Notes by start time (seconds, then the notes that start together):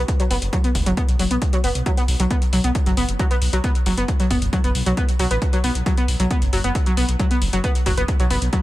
0.08 kick, closed hi-hat
0.20 F#3, closed hi-hat
0.30 F#1 B3, open hi-hat
0.42 F#1, closed hi-hat
0.53 F#3, kick, closed hi-hat
0.64 B3, closed hi-hat
0.75 F#1, kick, open hi-hat
0.86 F#1 F#3, closed hi-hat
0.97 B3, kick, closed hi-hat
1.09 B1, closed hi-hat
1.19 F#1 F#3, open hi-hat
1.31 B1 B3, closed hi-hat
1.42 kick, closed hi-hat
1.53 F#3, closed hi-hat
1.64 F#1 B3, open hi-hat
1.75 B1, closed hi-hat
1.86 F#3, kick, closed hi-hat
1.97 B3, closed hi-hat
2.08 B1, open hi-hat
2.20 B1 F#3, closed hi-hat
2.31 B3, kick, closed hi-hat
2.42 closed hi-hat
2.53 B1 F#3, open hi-hat
2.64 B1 B3, closed hi-hat
2.75 kick, closed hi-hat
2.86 F#1 F#3, closed hi-hat
2.97 F#1 B3, open hi-hat
3.09 F#1, closed hi-hat
3.19 F#3, kick, closed hi-hat
3.31 B3, closed hi-hat
3.42 B1, open hi-hat
3.53 B1 F#3, closed hi-hat
3.64 B3, kick, closed hi-hat
3.75 closed hi-hat
3.86 F#1 F#3, open hi-hat
3.97 F#1 B3, closed hi-hat
4.08 kick, closed hi-hat
4.20 F#3, closed hi-hat
4.31 F#1 B3, kick, open hi-hat
4.42 F#1, closed hi-hat
4.53 F#3, kick, closed hi-hat
4.64 F#1 B3, closed hi-hat
4.75 B1, open hi-hat
4.86 B1 F#3, closed hi-hat
4.97 B3, kick, closed hi-hat
5.09 closed hi-hat
5.19 B1 F#3, open hi-hat
5.31 A1 B3, closed hi-hat
5.42 kick, closed hi-hat
5.53 F#3, closed hi-hat
5.64 B1 B3, open hi-hat
5.75 B1, closed hi-hat
5.86 F#3, kick, closed hi-hat
5.97 B3, closed hi-hat
6.08 B1, open hi-hat
6.20 B1 F#3, closed hi-hat
6.31 B3, kick, closed hi-hat
6.42 F#1, closed hi-hat
6.53 F#1 F#3, open hi-hat
6.64 F#1 B3, closed hi-hat
6.75 kick, closed hi-hat
6.86 F#3, closed hi-hat
6.97 B1 B3, open hi-hat
7.09 B1, closed hi-hat
7.19 F#3, kick, closed hi-hat
7.31 B3, closed hi-hat
7.42 F#1, open hi-hat
7.53 F#1 F#3, closed hi-hat
7.64 B3, kick, closed hi-hat
7.75 closed hi-hat
7.86 F#1 F#3, kick, open hi-hat
7.97 F#1 B3, closed hi-hat
8.08 kick, closed hi-hat
8.20 B1 F#3, closed hi-hat
8.31 F#1 B3, open hi-hat
8.42 B1, closed hi-hat
8.53 F#3, kick, closed hi-hat